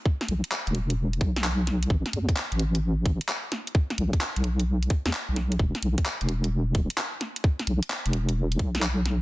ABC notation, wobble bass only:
X:1
M:4/4
L:1/16
Q:"Swing 16ths" 1/4=130
K:Ador
V:1 name="Wobble bass" clef=bass
z2 B,,, z2 E,,,4- E,,, B,,,6 | A,,, z E,, z2 A,,,4- A,,, A,,, z4 z | z2 B,,, z2 B,,,4- B,,, z E,, z B,,,3 | E,,, z B,,, z2 E,,,4- E,,, E,,, z4 z |
z2 B,,, z2 E,,,4- E,,, B,,,6 |]